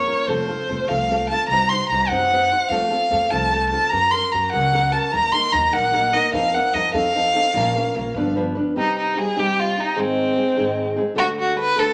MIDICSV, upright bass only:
0, 0, Header, 1, 2, 480
1, 0, Start_track
1, 0, Tempo, 402685
1, 344, Time_signature, 6, 3, 24, 8
1, 14225, End_track
2, 0, Start_track
2, 0, Title_t, "Upright bass"
2, 0, Program_c, 0, 32
2, 333, Note_on_c, 0, 29, 89
2, 650, Note_off_c, 0, 29, 0
2, 818, Note_on_c, 0, 29, 86
2, 977, Note_off_c, 0, 29, 0
2, 1050, Note_on_c, 0, 36, 95
2, 1523, Note_off_c, 0, 36, 0
2, 1767, Note_on_c, 0, 36, 96
2, 2084, Note_off_c, 0, 36, 0
2, 2254, Note_on_c, 0, 36, 86
2, 2413, Note_off_c, 0, 36, 0
2, 2495, Note_on_c, 0, 42, 105
2, 2967, Note_off_c, 0, 42, 0
2, 3216, Note_on_c, 0, 41, 83
2, 3533, Note_off_c, 0, 41, 0
2, 3713, Note_on_c, 0, 41, 84
2, 3870, Note_off_c, 0, 41, 0
2, 3955, Note_on_c, 0, 36, 84
2, 4429, Note_off_c, 0, 36, 0
2, 4678, Note_on_c, 0, 42, 102
2, 4995, Note_off_c, 0, 42, 0
2, 5170, Note_on_c, 0, 42, 80
2, 5327, Note_off_c, 0, 42, 0
2, 5405, Note_on_c, 0, 37, 92
2, 5874, Note_off_c, 0, 37, 0
2, 6122, Note_on_c, 0, 39, 89
2, 6433, Note_off_c, 0, 39, 0
2, 6595, Note_on_c, 0, 39, 101
2, 6752, Note_off_c, 0, 39, 0
2, 6836, Note_on_c, 0, 34, 78
2, 7303, Note_off_c, 0, 34, 0
2, 7542, Note_on_c, 0, 41, 105
2, 7857, Note_off_c, 0, 41, 0
2, 8028, Note_on_c, 0, 41, 83
2, 8186, Note_off_c, 0, 41, 0
2, 8264, Note_on_c, 0, 41, 83
2, 8736, Note_off_c, 0, 41, 0
2, 8987, Note_on_c, 0, 34, 98
2, 9302, Note_off_c, 0, 34, 0
2, 9472, Note_on_c, 0, 34, 95
2, 9630, Note_off_c, 0, 34, 0
2, 9710, Note_on_c, 0, 31, 89
2, 10184, Note_off_c, 0, 31, 0
2, 14225, End_track
0, 0, End_of_file